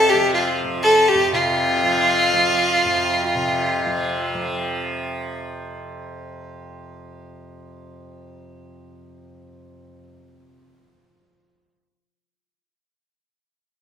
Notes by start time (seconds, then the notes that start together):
Already playing: F2 C3 F3 A4
0.09 G4
0.13 F3
0.34 F4
0.64 F3
0.83 A4
1.09 G4
1.14 F2
1.33 C3 F4
1.83 F3
2.33 F3
2.85 F2
3.35 C3
3.86 F3
4.35 F3